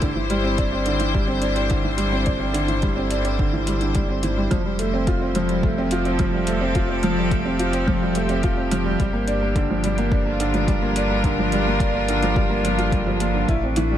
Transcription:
0.00 4.48 G1 medium
0.00 0.10 D3 medium
0.00 5.35 D4 medium
0.00 6.31 E4 medium
0.00 1.73 G4 medium
0.00 6.31 C5 medium
0.00 kick medium
0.00 closed hi-hat soft
0.16 0.24 E3 medium
0.30 0.44 G3 medium
0.30 closed hi-hat medium
0.44 0.58 C4 medium
0.58 0.72 D4 medium
0.58 kick medium
0.58 closed hi-hat soft
0.73 0.86 C4 medium
0.86 0.94 D3 medium
0.86 closed hi-hat soft
1.00 1.08 E3 medium
1.00 closed hi-hat soft
1.13 1.27 G3 medium
1.13 kick medium
1.27 1.41 C4 medium
1.42 1.55 D4 medium
1.42 closed hi-hat medium
1.55 1.69 C4 medium
1.55 closed hi-hat soft
1.70 1.78 D3 medium
1.70 kick medium
1.70 closed hi-hat soft
1.84 1.92 E3 medium
1.97 2.11 G3 medium
1.97 closed hi-hat medium
2.12 2.26 C4 medium
2.26 2.40 D4 medium
2.26 kick medium
2.26 closed hi-hat soft
2.40 2.54 C4 medium
2.54 2.62 D3 medium
2.54 closed hi-hat medium
2.68 2.77 E3 medium
2.68 closed hi-hat soft
2.82 2.96 G3 medium
2.82 kick medium
2.82 closed hi-hat soft
2.96 3.10 C4 medium
3.11 3.24 D4 medium
3.11 closed hi-hat medium
3.25 3.38 C4 medium
3.25 closed hi-hat soft
3.39 3.47 D3 medium
3.39 kick medium
3.53 3.61 E3 medium
3.67 3.80 G3 medium
3.67 closed hi-hat medium
3.81 3.94 D3 medium
3.81 closed hi-hat soft
3.95 4.08 G3 medium
3.95 kick medium
3.95 closed hi-hat soft
4.09 4.17 C4 medium
4.23 4.31 E3 medium
4.23 closed hi-hat medium
4.37 4.50 G3 medium
4.51 8.97 F1 medium
4.51 4.59 F3 medium
4.51 9.01 F3 medium
4.51 kick medium
4.51 closed hi-hat soft
4.65 4.73 G3 medium
4.79 4.92 A3 medium
4.79 closed hi-hat medium
4.94 5.07 C4 medium
5.07 5.21 F4 medium
5.07 kick medium
5.07 closed hi-hat soft
5.13 10.41 C4 medium
5.22 5.35 C4 medium
5.35 5.43 F3 medium
5.35 closed hi-hat medium
5.49 5.58 G3 medium
5.49 closed hi-hat soft
5.63 5.77 A3 loud
5.63 kick loud
5.73 10.24 G4 medium
5.78 5.91 C4 medium
5.91 6.05 F4 medium
5.91 closed hi-hat medium
6.02 6.19 C4 medium
6.02 9.00 A4 medium
6.02 closed hi-hat soft
6.19 6.27 F3 medium
6.19 kick medium
6.19 closed hi-hat soft
6.33 6.41 G3 medium
6.47 6.61 A3 medium
6.47 closed hi-hat medium
6.61 6.75 C4 medium
6.75 6.89 F4 loud
6.75 kick medium
6.75 closed hi-hat soft
6.89 7.03 C4 medium
7.03 7.11 F3 medium
7.03 closed hi-hat medium
7.17 7.25 G3 medium
7.31 7.45 A3 medium
7.31 kick loud
7.31 closed hi-hat soft
7.46 7.59 C4 medium
7.59 7.73 F4 medium
7.59 closed hi-hat medium
7.73 7.87 C4 medium
7.73 closed hi-hat soft
7.87 7.95 F3 medium
7.87 kick medium
8.02 8.10 G3 medium
8.15 8.29 A3 medium
8.15 closed hi-hat medium
8.29 8.43 C4 medium
8.29 closed hi-hat soft
8.43 8.57 F4 medium
8.43 kick medium
8.43 closed hi-hat soft
8.58 8.71 C4 medium
8.71 8.80 F3 medium
8.71 closed hi-hat medium
8.85 8.94 G3 medium
9.00 13.46 G1 medium
9.00 9.13 G3 medium
9.00 13.49 G3 medium
9.00 kick medium
9.00 closed hi-hat soft
9.13 9.27 A#3 medium
9.27 9.41 D4 medium
9.27 13.98 D4 medium
9.27 closed hi-hat medium
9.42 9.55 A#3 medium
9.56 9.64 D3 medium
9.56 kick loud
9.56 closed hi-hat soft
9.70 9.78 F3 medium
9.84 9.97 G3 medium
9.84 closed hi-hat medium
9.98 10.11 A#3 medium
9.98 closed hi-hat soft
10.12 10.26 D4 loud
10.12 13.49 A#4 medium
10.12 kick loud
10.26 10.39 A#3 medium
10.26 13.49 F4 medium
10.40 10.48 D3 medium
10.40 closed hi-hat medium
10.54 10.62 F3 medium
10.54 closed hi-hat soft
10.68 10.81 G3 loud
10.68 kick loud
10.68 closed hi-hat soft
10.82 10.95 A#3 medium
10.96 11.10 D4 medium
10.96 closed hi-hat medium
11.11 11.24 A#3 medium
11.24 11.32 D3 medium
11.24 kick medium
11.24 closed hi-hat soft
11.39 11.46 F3 medium
11.52 11.66 G3 medium
11.52 closed hi-hat medium
11.67 11.80 A#3 medium
11.80 11.94 D4 medium
11.80 kick loud
11.80 closed hi-hat soft
11.95 12.08 A#3 medium
12.08 12.16 D3 medium
12.08 closed hi-hat medium
12.23 12.30 F3 medium
12.23 closed hi-hat soft
12.36 12.50 G3 medium
12.36 kick loud
12.50 12.63 A#3 medium
12.64 12.78 F3 medium
12.64 closed hi-hat medium
12.78 12.92 F4 medium
12.78 closed hi-hat soft
12.92 13.01 G3 medium
12.92 kick loud
12.92 closed hi-hat soft
13.07 13.15 F3 medium
13.20 13.34 A#3 medium
13.20 closed hi-hat medium
13.34 13.48 D3 medium
13.48 13.98 A1 medium
13.48 13.98 A3 medium
13.48 13.62 E4 loud
13.48 kick medium
13.48 closed hi-hat soft
13.63 13.76 C4 medium
13.76 13.85 E3 loud
13.76 closed hi-hat medium
13.91 13.98 G3 medium

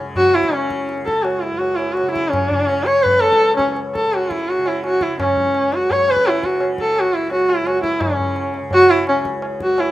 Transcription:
0.00 0.99 C#2 medium
0.00 1.52 F#2 medium
0.00 0.48 C#3 medium
0.16 0.36 F#4 loud
0.16 tabla tin medium
0.16 tabla ge medium
0.34 0.55 E4 medium
0.34 tabla na medium
0.43 tabla ke medium
0.48 2.03 C#3 medium
0.53 0.90 C#4 medium
0.53 tabla na medium
0.70 tabla ke medium
0.89 tabla te medium
0.98 3.05 C#2 medium
0.98 tabla te medium
1.05 1.24 A4 medium
1.05 tabla ke medium
1.16 tabla te medium
1.23 1.44 F#4 medium
1.23 tabla na medium
1.42 1.60 E4 medium
1.42 tabla te medium
1.52 3.56 F#2 medium
1.58 1.77 F#4 medium
1.58 tabla tin medium
1.75 1.94 E4 medium
1.75 tabla na medium
1.93 2.10 F#4 medium
1.97 tabla na medium
2.03 2.54 C#3 medium
2.11 2.30 E4 medium
2.16 tabla ke medium
2.29 2.86 C#4 medium
2.33 tabla na loud
2.33 tabla ge medium
2.51 4.06 C#3 medium
2.51 tabla ge medium
2.69 tabla na medium
2.84 3.04 C#5 loud
2.84 tabla te medium
3.02 5.07 C#2 medium
3.02 3.22 B4 loud
3.02 tabla tin medium
3.02 tabla ge medium
3.20 3.56 A4 loud
3.20 tabla na medium
3.33 tabla ke medium
3.41 tabla te medium
3.51 tabla te medium
3.57 5.60 F#2 medium
3.57 3.74 C#4 medium
3.57 tabla ke medium
3.68 tabla te medium
3.77 tabla na medium
3.95 4.15 A4 medium
3.95 tabla ke medium
4.06 4.59 C#3 medium
4.13 4.33 F#4 medium
4.13 tabla na medium
4.31 4.50 E4 medium
4.31 tabla ke medium
4.39 tabla te medium
4.48 4.69 F#4 medium
4.48 tabla tin medium
4.59 6.10 C#3 medium
4.66 4.84 E4 medium
4.66 tabla na medium
4.84 5.04 F#4 medium
4.84 tabla na medium
5.01 5.20 E4 medium
5.01 tabla ke medium
5.08 7.10 C#2 medium
5.20 5.75 C#4 medium
5.20 tabla na loud
5.20 tabla ge medium
5.37 tabla ge medium
5.55 tabla na medium
5.60 7.61 F#2 medium
5.72 5.93 F#4 medium
5.72 tabla te medium
5.90 6.12 C#5 loud
5.90 tabla tin medium
5.90 tabla ge medium
6.08 6.61 C#3 medium
6.08 6.29 B4 loud
6.08 tabla na medium
6.17 tabla ke medium
6.26 6.46 E4 medium
6.26 tabla na medium
6.43 6.62 F#4 medium
6.43 tabla ke medium
6.61 8.12 C#3 medium
6.61 tabla na medium
6.78 7.01 A4 medium
6.78 tabla ke medium
6.96 tabla na medium
7.00 7.17 F#4 loud
7.11 9.11 C#2 medium
7.11 tabla te medium
7.15 7.32 E4 medium
7.31 7.51 F#4 medium
7.31 tabla tin medium
7.49 7.68 E4 medium
7.49 tabla na medium
7.61 9.60 F#2 medium
7.67 7.83 F#4 loud
7.67 tabla na medium
7.83 8.03 E4 medium
7.83 tabla ke medium
8.01 8.55 C#4 medium
8.01 tabla na loud
8.01 tabla ge loud
8.12 8.62 C#3 medium
8.19 tabla ge medium
8.36 tabla na medium
8.54 tabla te medium
8.62 9.91 C#3 medium
8.71 8.91 F#4 loud
8.71 tabla tin medium
8.71 tabla ge medium
8.89 9.07 E4 loud
8.89 tabla na medium
9.07 9.91 C#2 medium
9.07 9.24 C#4 medium
9.07 tabla na medium
9.25 tabla ke medium
9.42 tabla na medium
9.60 9.91 F#2 medium
9.60 9.81 F#4 medium
9.60 tabla ke medium
9.78 9.91 E4 medium
9.78 tabla na medium

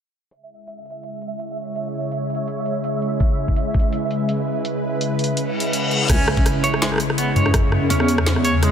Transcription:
0.31 8.71 C#3 medium
0.31 6.11 E5 medium
0.31 closed hi-hat medium
0.36 8.71 G#3 medium
0.42 8.71 E4 medium
0.67 closed hi-hat medium
0.85 closed hi-hat soft
0.90 closed hi-hat medium
1.03 closed hi-hat medium
1.11 3.56 C#5 medium
1.22 closed hi-hat medium
1.40 closed hi-hat medium
1.76 closed hi-hat medium
2.12 closed hi-hat medium
2.30 closed hi-hat soft
2.35 closed hi-hat medium
2.48 closed hi-hat medium
2.66 closed hi-hat medium
2.84 closed hi-hat medium
3.02 closed hi-hat soft
3.20 kick loud
3.20 closed hi-hat medium
3.46 7.50 B4 medium
3.46 kick medium
3.56 closed hi-hat medium
3.74 kick loud
3.74 closed hi-hat soft
3.79 closed hi-hat medium
3.93 closed hi-hat medium
4.11 closed hi-hat medium
4.29 closed hi-hat medium
4.65 closed hi-hat medium
5.01 closed hi-hat medium
5.19 closed hi-hat soft
5.24 closed hi-hat medium
5.37 closed hi-hat medium
5.37 reverse cymbal medium
5.60 closed hi-hat medium
5.73 closed hi-hat medium
5.91 closed hi-hat soft
6.09 6.19 C#2 loud
6.09 6.62 C#4 loud
6.09 kick loud
6.09 cross-stick medium
6.09 closed hi-hat medium
6.09 crash loud
6.09 impact medium
6.28 cross-stick medium
6.37 kick loud
6.46 cross-stick medium
6.46 closed hi-hat medium
6.64 6.80 C#5 loud
6.64 closed hi-hat medium
6.74 cross-stick medium
6.80 6.99 G#3 loud
6.80 8.71 C#5 medium
6.80 snare loud
6.80 closed hi-hat medium
6.92 cross-stick soft
6.94 cross-stick soft
6.96 cross-stick medium
6.98 cross-stick medium
6.98 closed hi-hat medium
7.10 cross-stick medium
7.18 7.35 B3 medium
7.18 closed hi-hat medium
7.36 7.92 F#2 loud
7.36 7.89 C#5 medium
7.36 closed hi-hat soft
7.46 cross-stick medium
7.54 kick loud
7.54 cross-stick medium
7.54 closed hi-hat medium
7.72 cross-stick medium
7.90 8.71 E2 medium
7.90 8.43 C#4 loud
7.90 closed hi-hat medium
8.00 cross-stick medium
8.08 closed hi-hat medium
8.18 cross-stick medium
8.27 snare loud
8.27 closed hi-hat medium
8.36 cross-stick medium
8.45 8.61 C#5 loud
8.45 closed hi-hat medium
8.63 8.71 G#3 loud
8.63 cross-stick medium
8.63 closed hi-hat medium

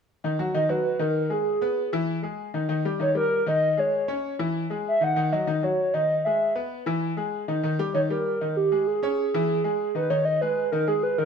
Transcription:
0.24 0.36 D#3 medium
0.24 0.37 D#4 medium
0.39 0.52 F#3 medium
0.39 0.52 F#4 medium
0.54 0.67 D#3 medium
0.54 0.67 D#4 medium
0.54 0.71 D#5 loud
0.69 0.95 F#3 medium
0.69 0.95 F#4 medium
0.69 1.03 B4 medium
0.99 1.25 D#3 medium
0.99 1.25 D#4 medium
0.99 1.34 A#4 medium
1.29 1.55 G#3 medium
1.29 1.56 G#4 medium
1.29 1.94 G#4 medium
1.61 1.87 B3 medium
1.61 1.87 B4 medium
1.93 2.18 E3 medium
1.93 2.18 E4 medium
2.22 2.48 G#3 medium
2.22 2.49 G#4 medium
2.54 2.67 D#3 medium
2.54 2.67 D#4 medium
2.69 2.82 D#3 medium
2.69 2.82 D#4 medium
2.85 2.98 G3 medium
2.85 2.98 G4 medium
2.99 3.13 D#3 medium
2.99 3.13 D#4 medium
2.99 3.15 C#5 medium
3.15 3.41 G3 medium
3.15 3.41 G4 medium
3.15 3.45 A#4 medium
3.46 3.72 D#3 medium
3.46 3.72 D#4 medium
3.46 3.81 D#5 loud
3.77 4.03 G#3 medium
3.77 4.03 G#4 medium
3.77 4.40 C#5 medium
4.08 4.34 C#4 medium
4.08 4.34 C#5 medium
4.39 4.65 E3 medium
4.39 4.65 E4 medium
4.70 4.95 G#3 medium
4.70 4.96 G#4 medium
4.88 5.05 E5 loud
5.01 5.14 D#3 medium
5.01 5.14 D#4 medium
5.01 5.34 F#5 loud
5.16 5.29 D#3 medium
5.16 5.29 D#4 medium
5.33 5.45 F#3 medium
5.33 5.45 F#4 medium
5.33 5.65 D#5 medium
5.47 5.60 D#3 medium
5.47 5.60 D#4 medium
5.63 5.88 F#3 medium
5.63 5.88 F#4 medium
5.63 5.95 C#5 medium
5.94 6.19 D#3 medium
5.94 6.19 D#4 medium
5.94 6.24 D#5 medium
6.25 6.51 G#3 medium
6.25 6.51 G#4 medium
6.25 6.54 E5 medium
6.55 6.81 B3 medium
6.55 6.81 B4 medium
6.86 7.12 E3 medium
6.86 7.12 E4 medium
7.17 7.42 G#3 medium
7.17 7.43 G#4 medium
7.48 7.61 D#3 medium
7.48 7.61 D#4 medium
7.63 7.76 D#3 medium
7.63 7.76 D#4 medium
7.79 7.92 G3 medium
7.79 7.92 G4 medium
7.94 8.07 D#3 medium
7.94 8.07 D#4 medium
7.94 8.01 C#5 loud
8.09 8.36 G3 medium
8.09 8.36 G4 medium
8.09 8.58 A#4 medium
8.41 8.66 D#3 medium
8.41 8.66 D#4 medium
8.57 8.89 G4 medium
8.72 8.97 G#3 medium
8.72 8.97 G#4 medium
8.87 9.95 G#4 medium
9.03 9.28 C#4 medium
9.03 9.28 C#5 medium
9.34 9.59 E3 medium
9.34 9.59 E4 medium
9.64 9.89 G#3 medium
9.64 9.90 G#4 medium
9.95 10.08 D#3 medium
9.95 10.08 D#4 medium
9.95 10.12 B4 loud
10.10 10.36 D#3 medium
10.10 10.36 D#4 medium
10.10 10.27 C#5 loud
10.25 10.43 D#5 loud
10.41 10.67 G#3 medium
10.41 10.67 G#4 medium
10.41 10.71 B4 loud
10.72 10.85 D#3 medium
10.72 10.85 D#4 medium
10.72 10.90 A#4 medium
10.87 11.13 G#3 medium
10.87 11.13 G#4 medium
10.87 11.05 G#4 medium
11.03 11.18 B4 medium
11.18 11.25 D#3 medium
11.18 11.25 D#4 medium
11.18 11.25 A#4 medium

